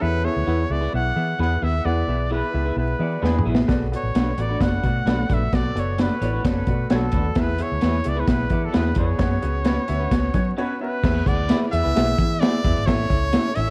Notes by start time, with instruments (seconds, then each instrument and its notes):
Already playing: clean electric guitar C#4 A4
0.01 fingered electric bass E2, grand piano E3 B3 E4 G#4 E5, trumpet B4
0.24 grand piano B3 E4 G#4 E5, trumpet C#5
0.36 fingered electric bass D2
0.46 fingered electric bass E2, clean electric guitar B3 E4 G#4 B4, grand piano B3 E4 G#4 F#5
0.70 fingered electric bass C#2, grand piano B3 E4 G#4 E5, trumpet D5
0.81 clean electric guitar B3 E4 G#4 B4
0.93 fingered electric bass B1, grand piano B3 E4 G#4 E5, trumpet F#5
1.16 fingered electric bass E3, grand piano B3 E4 G#4 E5
1.39 fingered electric bass E2, clean electric guitar B3 E4 G#4 B4, grand piano B3 E4 G#4 B4, trumpet F#5
1.62 fingered electric bass D#2, grand piano B3 E4 G#4 E5, clean electric guitar B3 E4 G#4 B4, trumpet E5
1.85 fingered electric bass E2, grand piano E3 B3 E4 G#4 F#5, trumpet D5
2.07 fingered electric bass B1, grand piano B3 E4 G#4 E5
2.30 clean electric guitar B3 E4 G#4 B4, grand piano B3 E4 G#4 E5, trumpet B4
2.53 fingered electric bass C#2, grand piano B3 E4 G#4 E5
2.65 clean electric guitar B3 E4 G#4 B4
2.76 fingered electric bass B1, grand piano B3 E4 G#4 E5, trumpet B4
2.99 fingered electric bass E3, grand piano B3 E4 G#4 E5, clean electric guitar F#4 D5
3.21 fingered electric bass E2, grand piano B3 E4 G#4 B4, clean electric guitar B3 D4 E4 G#4 B4, trumpet G#4, snare
3.39 mid tom
3.44 fingered electric bass A#1, grand piano B3 E4 G#4 E5, clean electric guitar B3 E4 G#4 B4
3.55 snare
3.68 fingered electric bass B1, grand piano B2 B3 F#4 A4 D5, kick, snare, closed hi-hat
3.92 grand piano B3 F#4 A4 D5, closed hi-hat
3.96 trumpet C#5
4.03 fingered electric bass A1
4.14 fingered electric bass B1, clean electric guitar A3 D4 F#4 B4, grand piano B3 F#4 A4 D5, snare, closed hi-hat
4.38 fingered electric bass A1, grand piano B3 F#4 A4 D5, clean electric guitar F#4 D5, trumpet D5, closed hi-hat
4.49 clean electric guitar A3 D4 F#4 B4
4.60 fingered electric bass F#1, grand piano B3 F#4 A4 D5, clean electric guitar D4 B4, trumpet F#5, kick, snare, closed hi-hat
4.83 fingered electric bass B2, clean electric guitar A3 F#4, grand piano B3 F#4 A4 D5, kick, closed hi-hat
5.05 fingered electric bass B1, clean electric guitar A3 D4 F#4 B4, grand piano B3 F#4 A4 D5, snare, closed hi-hat
5.29 fingered electric bass A#1, clean electric guitar A3 D4 F#4 B4, grand piano B3 F#4 A4 D5, kick, closed hi-hat
5.33 trumpet E5
5.53 fingered electric bass B1, grand piano B2 B3 F#4 A4 D5, trumpet D5, kick, snare, closed hi-hat
5.75 fingered electric bass F#1, grand piano B3 F#4 A4 D5, closed hi-hat
5.79 trumpet C#5
5.98 clean electric guitar A3 D4 F#4 B4, grand piano B3 F#4 A4 D5, trumpet B4, snare, closed hi-hat
6.21 fingered electric bass A1, grand piano B3 F#4 A4 D5, clean electric guitar E4 C#5, closed hi-hat
6.33 clean electric guitar A3 D4 F#4 B4
6.44 fingered electric bass F#1, grand piano B3 F#4 A4 D5, clean electric guitar C#4 A4, kick, snare, closed hi-hat
6.49 trumpet B4
6.67 fingered electric bass B2, clean electric guitar A3 F#4, grand piano B3 F#4 A4 D5, kick, closed hi-hat
6.90 fingered electric bass B1, clean electric guitar A3 D4 F#4 B4, grand piano B3 F#4 A4 C#5, snare, closed hi-hat
6.95 trumpet A4
7.12 fingered electric bass D#2, clean electric guitar A3 D4 F#4 B4, grand piano B3 F#4 A4 D5, kick, closed hi-hat
7.35 fingered electric bass E2, grand piano E3 B3 E4 G#4 E5, kick, snare, closed hi-hat
7.40 trumpet B4
7.58 grand piano B3 E4 G#4 E5, closed hi-hat
7.62 trumpet C#5
7.72 fingered electric bass D2
7.81 fingered electric bass E2, clean electric guitar B3 E4 G#4 B4, grand piano B3 E4 G#4 E5, snare, closed hi-hat
8.04 fingered electric bass C#2, grand piano B3 E4 G#4 E5, closed hi-hat
8.09 trumpet D5
8.16 clean electric guitar B3 E4 G#4 B4
8.20 trumpet B4
8.28 fingered electric bass B1, grand piano B3 E4 G#4 E5, trumpet B4, kick, snare, closed hi-hat
8.50 fingered electric bass E3, grand piano B3 E4 G#4 E5, clean electric guitar F#4 D5, kick, closed hi-hat
8.65 trumpet A4
8.73 fingered electric bass E2, clean electric guitar B3 D4 E4 G#4 B4, grand piano B3 E4 G#4 E5, trumpet B4, snare, closed hi-hat
8.95 fingered electric bass F2, clean electric guitar B3 E4 G#4 B4, grand piano B3 E4 G#4 D5, trumpet C#5, kick, closed hi-hat
9.18 fingered electric bass F#2, grand piano B3 C#4 F#4 C#5, kick, snare, closed hi-hat
9.42 fingered electric bass C#2, grand piano B3 C#4 F#4 G#4, closed hi-hat
9.64 clean electric guitar B3 C#4 F#4 B4, grand piano B3 C#4 F#4 C#5, snare, closed hi-hat
9.88 fingered electric bass D2, grand piano B3 C#4 F#4 E5, closed hi-hat
10.00 clean electric guitar B3 C#4 F#4 B4
10.11 fingered electric bass C#2, grand piano B3 C#4 F#4 C#5, kick, snare, closed hi-hat
10.34 fingered electric bass F#3, grand piano B3 C#4 F#4 C#5, kick, closed hi-hat
10.56 clean electric guitar B3 C#4 F#4 B4, grand piano B3 C#4 F#4 C#5
10.61 trumpet B4
10.80 grand piano B3 C#4 F#4 E5, trumpet B4
11.03 fingered electric bass E2, grand piano E3 B3 E4 G#4 E5, kick, snare, crash
11.26 fingered electric bass D2, grand piano B3 E4 G#4 F#5, trumpet D5, kick, closed hi-hat
11.48 grand piano B3 E4 G#4 E5, clean electric guitar B3 E4 G#4 B4, snare, closed hi-hat
11.72 fingered electric bass E2, grand piano B3 E4 G#4 E5, trumpet E5, closed hi-hat
11.83 fingered electric bass C#2, clean electric guitar B3 E4 G#4 B4
11.95 fingered electric bass B1, grand piano B3 E4 G#4 E5, snare, closed hi-hat
12.17 fingered electric bass E3, grand piano B3 E4 G#4 E5, kick, closed hi-hat
12.40 clean electric guitar B3 E4 G#4 B4, grand piano B3 E4 G#4 E5, trumpet D5, snare, closed hi-hat
12.64 fingered electric bass E2, grand piano B3 E4 G#4 E5, kick, closed hi-hat
12.76 fingered electric bass G#1, closed hi-hat
12.86 fingered electric bass A1, grand piano A2 C#4 E4 A4 E5, trumpet C#5, kick, snare, closed hi-hat
13.10 fingered electric bass C#2, grand piano C#4 E4 A4 E5, kick, closed hi-hat
13.32 clean electric guitar C#4 E4 A4 C#5, grand piano C#4 E4 A4 E5, snare, closed hi-hat
13.55 fingered electric bass A1, grand piano C#4 E4 A4 E5, trumpet E5, closed hi-hat